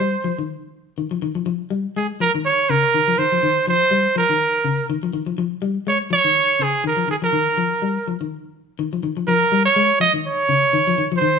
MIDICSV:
0, 0, Header, 1, 3, 480
1, 0, Start_track
1, 0, Tempo, 488202
1, 1443, Time_signature, 4, 2, 24, 8
1, 11200, End_track
2, 0, Start_track
2, 0, Title_t, "Trumpet"
2, 0, Program_c, 0, 56
2, 0, Note_on_c, 0, 72, 86
2, 399, Note_off_c, 0, 72, 0
2, 1932, Note_on_c, 0, 68, 69
2, 2038, Note_off_c, 0, 68, 0
2, 2175, Note_on_c, 0, 70, 92
2, 2281, Note_off_c, 0, 70, 0
2, 2412, Note_on_c, 0, 73, 96
2, 2655, Note_on_c, 0, 70, 99
2, 2669, Note_off_c, 0, 73, 0
2, 3128, Note_on_c, 0, 72, 102
2, 3142, Note_off_c, 0, 70, 0
2, 3606, Note_off_c, 0, 72, 0
2, 3625, Note_on_c, 0, 72, 102
2, 4062, Note_off_c, 0, 72, 0
2, 4107, Note_on_c, 0, 70, 85
2, 4777, Note_off_c, 0, 70, 0
2, 5782, Note_on_c, 0, 73, 84
2, 5886, Note_off_c, 0, 73, 0
2, 6026, Note_on_c, 0, 73, 110
2, 6518, Note_on_c, 0, 68, 90
2, 6532, Note_off_c, 0, 73, 0
2, 6741, Note_off_c, 0, 68, 0
2, 6757, Note_on_c, 0, 70, 84
2, 6965, Note_off_c, 0, 70, 0
2, 6986, Note_on_c, 0, 68, 81
2, 7041, Note_off_c, 0, 68, 0
2, 7115, Note_on_c, 0, 70, 79
2, 8027, Note_off_c, 0, 70, 0
2, 9122, Note_on_c, 0, 70, 92
2, 9469, Note_off_c, 0, 70, 0
2, 9491, Note_on_c, 0, 73, 98
2, 9814, Note_off_c, 0, 73, 0
2, 9840, Note_on_c, 0, 75, 105
2, 9948, Note_off_c, 0, 75, 0
2, 10097, Note_on_c, 0, 73, 96
2, 10902, Note_off_c, 0, 73, 0
2, 10981, Note_on_c, 0, 72, 84
2, 11200, Note_off_c, 0, 72, 0
2, 11200, End_track
3, 0, Start_track
3, 0, Title_t, "Clean electric guitar"
3, 0, Program_c, 1, 27
3, 0, Note_on_c, 1, 55, 72
3, 146, Note_off_c, 1, 55, 0
3, 239, Note_on_c, 1, 53, 70
3, 320, Note_off_c, 1, 53, 0
3, 378, Note_on_c, 1, 51, 63
3, 522, Note_off_c, 1, 51, 0
3, 961, Note_on_c, 1, 51, 69
3, 1042, Note_off_c, 1, 51, 0
3, 1092, Note_on_c, 1, 53, 70
3, 1157, Note_off_c, 1, 53, 0
3, 1201, Note_on_c, 1, 51, 69
3, 1283, Note_off_c, 1, 51, 0
3, 1329, Note_on_c, 1, 53, 62
3, 1396, Note_off_c, 1, 53, 0
3, 1435, Note_on_c, 1, 53, 83
3, 1582, Note_off_c, 1, 53, 0
3, 1676, Note_on_c, 1, 55, 71
3, 1823, Note_off_c, 1, 55, 0
3, 1931, Note_on_c, 1, 56, 71
3, 2074, Note_off_c, 1, 56, 0
3, 2167, Note_on_c, 1, 53, 69
3, 2247, Note_off_c, 1, 53, 0
3, 2308, Note_on_c, 1, 51, 71
3, 2450, Note_off_c, 1, 51, 0
3, 2651, Note_on_c, 1, 49, 76
3, 2794, Note_off_c, 1, 49, 0
3, 2895, Note_on_c, 1, 51, 76
3, 2973, Note_off_c, 1, 51, 0
3, 3025, Note_on_c, 1, 53, 70
3, 3087, Note_off_c, 1, 53, 0
3, 3133, Note_on_c, 1, 51, 71
3, 3212, Note_off_c, 1, 51, 0
3, 3267, Note_on_c, 1, 53, 62
3, 3328, Note_off_c, 1, 53, 0
3, 3373, Note_on_c, 1, 51, 82
3, 3515, Note_off_c, 1, 51, 0
3, 3612, Note_on_c, 1, 53, 74
3, 3754, Note_off_c, 1, 53, 0
3, 3844, Note_on_c, 1, 55, 77
3, 3989, Note_off_c, 1, 55, 0
3, 4088, Note_on_c, 1, 53, 74
3, 4168, Note_off_c, 1, 53, 0
3, 4223, Note_on_c, 1, 51, 68
3, 4366, Note_off_c, 1, 51, 0
3, 4567, Note_on_c, 1, 49, 72
3, 4711, Note_off_c, 1, 49, 0
3, 4813, Note_on_c, 1, 51, 80
3, 4892, Note_off_c, 1, 51, 0
3, 4946, Note_on_c, 1, 53, 72
3, 5008, Note_off_c, 1, 53, 0
3, 5048, Note_on_c, 1, 51, 70
3, 5128, Note_off_c, 1, 51, 0
3, 5176, Note_on_c, 1, 53, 64
3, 5240, Note_off_c, 1, 53, 0
3, 5291, Note_on_c, 1, 53, 77
3, 5434, Note_off_c, 1, 53, 0
3, 5523, Note_on_c, 1, 55, 72
3, 5669, Note_off_c, 1, 55, 0
3, 5769, Note_on_c, 1, 56, 71
3, 5912, Note_off_c, 1, 56, 0
3, 6002, Note_on_c, 1, 53, 73
3, 6084, Note_off_c, 1, 53, 0
3, 6138, Note_on_c, 1, 51, 69
3, 6283, Note_off_c, 1, 51, 0
3, 6483, Note_on_c, 1, 49, 65
3, 6628, Note_off_c, 1, 49, 0
3, 6724, Note_on_c, 1, 51, 76
3, 6805, Note_off_c, 1, 51, 0
3, 6849, Note_on_c, 1, 53, 71
3, 6916, Note_off_c, 1, 53, 0
3, 6959, Note_on_c, 1, 51, 74
3, 7041, Note_off_c, 1, 51, 0
3, 7099, Note_on_c, 1, 53, 66
3, 7163, Note_off_c, 1, 53, 0
3, 7203, Note_on_c, 1, 51, 81
3, 7348, Note_off_c, 1, 51, 0
3, 7447, Note_on_c, 1, 53, 68
3, 7591, Note_off_c, 1, 53, 0
3, 7690, Note_on_c, 1, 55, 75
3, 7833, Note_off_c, 1, 55, 0
3, 7940, Note_on_c, 1, 53, 66
3, 8016, Note_off_c, 1, 53, 0
3, 8069, Note_on_c, 1, 51, 64
3, 8210, Note_off_c, 1, 51, 0
3, 8642, Note_on_c, 1, 51, 77
3, 8723, Note_off_c, 1, 51, 0
3, 8778, Note_on_c, 1, 53, 70
3, 8841, Note_off_c, 1, 53, 0
3, 8880, Note_on_c, 1, 51, 72
3, 8962, Note_off_c, 1, 51, 0
3, 9013, Note_on_c, 1, 53, 62
3, 9078, Note_off_c, 1, 53, 0
3, 9122, Note_on_c, 1, 53, 82
3, 9267, Note_off_c, 1, 53, 0
3, 9359, Note_on_c, 1, 55, 75
3, 9505, Note_off_c, 1, 55, 0
3, 9597, Note_on_c, 1, 56, 82
3, 9743, Note_off_c, 1, 56, 0
3, 9834, Note_on_c, 1, 53, 76
3, 9917, Note_off_c, 1, 53, 0
3, 9966, Note_on_c, 1, 51, 70
3, 10113, Note_off_c, 1, 51, 0
3, 10312, Note_on_c, 1, 49, 78
3, 10459, Note_off_c, 1, 49, 0
3, 10552, Note_on_c, 1, 51, 84
3, 10635, Note_off_c, 1, 51, 0
3, 10691, Note_on_c, 1, 53, 82
3, 10755, Note_off_c, 1, 53, 0
3, 10796, Note_on_c, 1, 51, 75
3, 10878, Note_off_c, 1, 51, 0
3, 10930, Note_on_c, 1, 53, 75
3, 10995, Note_off_c, 1, 53, 0
3, 11027, Note_on_c, 1, 51, 86
3, 11175, Note_off_c, 1, 51, 0
3, 11200, End_track
0, 0, End_of_file